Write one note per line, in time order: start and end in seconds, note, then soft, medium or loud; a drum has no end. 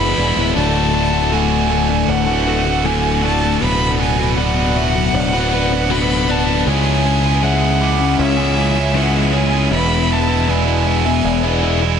0.00 0.16 F#1 medium
0.00 0.53 E2 medium
0.00 0.54 B2 medium
0.00 0.15 E3 medium
0.00 0.18 E3 medium
0.00 0.17 G#3 medium
0.00 0.52 G#3 medium
0.00 0.56 G#3 medium
0.00 0.17 B3 loud
0.00 0.17 E4 medium
0.00 0.18 E4 loud
0.00 0.18 B4 medium
0.00 0.52 E5 medium
0.00 0.53 B5 medium
0.00 0.56 B5 loud
0.16 0.35 E1 medium
0.16 0.36 E3 medium
0.16 0.36 G#3 medium
0.16 0.35 B3 medium
0.16 0.34 E4 medium
0.16 0.55 D5 medium
0.35 0.54 D1 medium
0.35 0.54 E3 medium
0.35 0.54 G#3 medium
0.35 0.54 B3 medium
0.35 0.53 E4 medium
0.54 2.05 D1 loud
0.54 1.30 D2 loud
0.54 0.91 A2 loud
0.54 0.92 D3 medium
0.54 0.93 A3 loud
0.54 0.94 F#4 loud
0.54 3.58 A4 medium
0.54 1.33 D5 medium
0.54 6.62 F#5 medium
0.54 1.34 A5 loud
0.54 6.62 D6 medium
0.92 1.30 A2 medium
0.92 1.13 D3 medium
0.92 1.11 A3 medium
0.92 1.10 F#4 medium
1.10 1.32 D3 medium
1.10 1.32 A3 medium
1.10 1.33 F#4 medium
1.30 2.84 D2 loud
1.30 1.68 A2 loud
1.30 1.52 D3 loud
1.30 1.50 A3 loud
1.30 1.49 F#4 loud
1.30 1.71 F#5 medium
1.30 2.11 G#5 loud
1.50 1.70 D3 medium
1.50 1.70 A3 medium
1.50 1.71 F#4 medium
1.69 2.45 A2 medium
1.69 2.29 D3 medium
1.69 2.27 A3 medium
1.69 2.26 F#4 medium
1.69 2.08 D5 medium
1.90 muted overdriven electric guitar stroke soft
2.08 3.57 D1 loud
2.08 3.61 D3 medium
2.08 2.85 B4 medium
2.08 2.86 F#5 loud
2.27 2.46 D3 medium
2.27 2.47 A3 medium
2.27 2.48 F#4 medium
2.46 2.83 A2 medium
2.46 2.67 D3 medium
2.46 2.65 A3 medium
2.46 2.64 F#4 medium
2.65 2.84 D3 medium
2.65 2.85 A3 medium
2.65 2.85 F#4 medium
2.65 muted overdriven electric guitar stroke medium
2.84 3.58 D2 medium
2.84 3.21 A2 loud
2.84 3.22 D3 medium
2.84 3.23 A3 loud
2.84 3.24 F#4 loud
2.84 3.22 A4 medium
2.84 3.23 G#5 medium
3.22 3.58 A2 medium
3.22 3.43 D3 medium
3.22 3.42 A3 medium
3.22 3.40 F#4 medium
3.22 3.61 D5 medium
3.22 3.60 A5 loud
3.42 3.60 D3 medium
3.42 3.59 A3 medium
3.42 3.59 F#4 medium
3.59 5.10 D1 loud
3.59 4.35 B2 loud
3.59 4.35 F#3 loud
3.59 3.97 B3 loud
3.59 3.98 D4 loud
3.59 3.99 F#4 loud
3.59 6.62 B4 medium
3.59 4.37 B4 medium
3.59 4.00 B4 loud
3.63 3.98 B5 loud
3.98 4.19 B3 medium
3.98 4.18 D4 medium
3.98 4.18 F#4 medium
3.98 4.16 B4 medium
3.98 4.36 G#5 loud
4.18 4.36 B3 medium
4.18 4.36 D4 medium
4.18 4.37 F#4 medium
4.18 4.37 B4 medium
4.36 4.94 B2 loud
4.36 4.94 F#3 loud
4.36 4.57 B3 loud
4.36 4.57 D4 loud
4.36 4.55 F#4 loud
4.36 4.54 B4 loud
4.36 4.75 D5 medium
4.36 5.92 F#5 loud
4.56 4.74 B3 medium
4.56 4.75 D4 medium
4.56 4.76 F#4 medium
4.56 4.77 B4 medium
4.75 5.34 B3 medium
4.75 5.34 D4 medium
4.75 5.33 F#4 medium
4.75 5.32 B4 medium
4.75 5.13 E5 medium
4.95 muted overdriven electric guitar stroke medium
5.13 6.62 D1 loud
5.13 6.66 D4 medium
5.13 5.90 D5 medium
5.33 5.50 B3 medium
5.33 5.51 D4 medium
5.33 5.52 F#4 medium
5.33 5.52 B4 medium
5.51 5.72 B3 medium
5.51 5.72 D4 medium
5.51 5.70 F#4 medium
5.51 5.70 B4 medium
5.71 5.89 B3 medium
5.71 5.89 D4 medium
5.71 5.90 F#4 medium
5.71 5.90 B4 medium
5.71 muted overdriven electric guitar stroke medium
5.89 6.63 B2 loud
5.89 6.64 F#3 loud
5.89 6.26 B3 loud
5.89 6.27 D4 loud
5.89 6.28 F#4 loud
5.89 6.28 B4 loud
5.89 6.29 B4 loud
5.89 6.32 B5 loud
6.27 6.48 B3 medium
6.27 6.48 D4 medium
6.27 6.46 F#4 medium
6.27 6.45 B4 medium
6.27 6.66 D5 medium
6.27 6.68 A5 loud
6.47 6.65 B3 medium
6.47 6.65 D4 medium
6.47 6.64 F#4 medium
6.47 6.63 B4 medium
6.66 8.15 C#2 loud
6.66 7.41 C#3 loud
6.66 12.00 G#3 medium
6.66 7.04 G#3 loud
6.66 7.05 C#4 loud
6.66 7.06 E4 loud
6.66 7.07 G#4 loud
6.66 7.42 C#5 medium
6.66 12.00 E5 medium
6.66 9.69 G#5 loud
6.66 7.45 G#5 loud
7.04 7.42 G#3 medium
7.04 7.24 C#4 medium
7.04 7.24 E4 medium
7.04 7.22 G#4 medium
7.23 7.42 C#4 medium
7.23 7.44 E4 medium
7.23 7.45 G#4 medium
7.42 7.99 C#3 loud
7.42 7.80 G#3 loud
7.42 7.63 C#4 loud
7.42 7.62 E4 loud
7.42 7.61 G#4 loud
7.42 7.80 E5 medium
7.42 8.19 F#5 medium
7.62 7.80 C#4 medium
7.62 7.82 E4 medium
7.62 7.83 G#4 medium
7.80 8.55 G#3 medium
7.80 8.39 C#4 medium
7.80 8.37 E4 medium
7.80 8.36 G#4 medium
7.80 8.19 D6 medium
8.00 muted overdriven electric guitar stroke medium
8.18 9.68 C#2 loud
8.18 9.72 C#4 medium
8.18 8.95 C#5 medium
8.18 8.98 E5 loud
8.37 8.56 C#4 medium
8.37 8.57 E4 medium
8.37 8.58 G#4 medium
8.56 8.94 G#3 medium
8.56 8.78 C#4 medium
8.56 8.77 E4 medium
8.56 8.75 G#4 medium
8.76 8.95 C#4 medium
8.76 8.95 E4 medium
8.76 8.96 G#4 medium
8.76 muted overdriven electric guitar stroke medium
8.94 9.69 C#3 medium
8.94 9.32 G#3 loud
8.94 9.33 C#4 medium
8.94 9.34 E4 medium
8.94 9.35 G#4 loud
8.94 9.33 B4 medium
8.94 9.37 F#5 medium
9.33 9.69 G#3 medium
9.33 9.53 C#4 medium
9.33 9.52 E4 medium
9.33 9.50 G#4 medium
9.33 9.71 C#5 medium
9.33 9.72 G#5 medium
9.51 9.70 C#4 medium
9.51 9.69 E4 medium
9.51 9.69 G#4 medium
9.70 11.21 E1 loud
9.70 10.46 E2 loud
9.70 10.46 B2 medium
9.70 10.08 E3 loud
9.70 10.09 G#3 loud
9.70 10.10 B3 loud
9.70 10.11 E4 loud
9.70 10.48 B4 medium
9.70 12.00 B5 medium
9.74 10.14 B5 loud
10.09 10.30 E3 medium
10.09 10.29 G#3 medium
10.09 10.28 B3 medium
10.09 10.26 E4 medium
10.09 10.51 A5 loud
10.28 10.47 E3 medium
10.28 10.47 G#3 medium
10.28 10.48 B3 medium
10.28 10.49 E4 medium
10.47 11.05 E2 loud
10.47 11.05 B2 loud
10.47 10.67 E3 loud
10.47 10.67 G#3 loud
10.47 10.65 B3 loud
10.47 10.65 E4 loud
10.47 10.86 D5 medium
10.47 12.00 G#5 medium
10.66 10.83 E3 medium
10.66 10.85 G#3 medium
10.66 10.85 B3 medium
10.66 10.86 E4 medium
10.85 11.45 E3 medium
10.85 11.44 G#3 medium
10.85 11.43 B3 medium
10.85 11.42 E4 medium
10.85 11.24 E5 medium
11.06 muted overdriven electric guitar stroke soft
11.24 12.00 E1 medium
11.24 12.00 G#3 medium
11.24 12.00 D5 medium
11.43 11.61 E3 medium
11.43 11.62 G#3 medium
11.43 11.63 B3 medium
11.43 11.64 E4 medium
11.62 11.83 E3 medium
11.62 11.82 G#3 medium
11.62 11.81 B3 medium
11.62 11.80 E4 medium
11.81 12.00 E3 medium
11.81 12.00 G#3 medium
11.81 12.00 B3 medium
11.81 12.00 E4 medium
11.81 muted overdriven electric guitar stroke medium